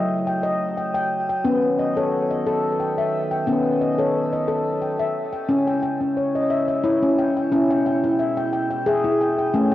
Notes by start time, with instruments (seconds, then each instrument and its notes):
Already playing: brass ensemble C#3 F#3 A3, handpan F#3 D#5 E5 G5
0.27 handpan G5
0.43 handpan D#5
0.78 handpan G5
0.95 handpan G5
1.29 handpan G5
1.45 brass ensemble D#3 B3, handpan B3 C#4
1.79 handpan D#5
1.97 handpan A4 C#5
2.31 handpan D#5
2.46 handpan A4
2.80 handpan G5
2.98 handpan E5
3.31 handpan G5
3.47 handpan B3 C#4
3.81 handpan D#5
3.98 handpan A4 C#5
4.33 handpan D#5
4.48 handpan A4
4.82 handpan G5
4.99 handpan E5
5.33 handpan G5
5.49 brass ensemble C#3 G#3 E4, handpan C#4
5.67 handpan G5
5.83 handpan G5
6.00 handpan C#4
6.17 handpan C#5
6.35 handpan D#5
6.50 handpan E5
6.68 handpan E5
6.84 handpan E4 C#5
7.03 handpan C#4
7.19 handpan G5
7.37 handpan G5
7.52 brass ensemble B2, handpan C#4 E4
7.71 handpan G5
7.86 handpan G5
8.04 handpan E4
8.19 handpan E5
8.37 handpan G5
8.53 handpan G5
8.71 handpan G5
8.86 handpan G#4 E5
9.04 handpan E4
9.21 handpan G5
9.38 handpan G5
9.54 brass ensemble C#3 A3, handpan A3 C#4
9.72 handpan G5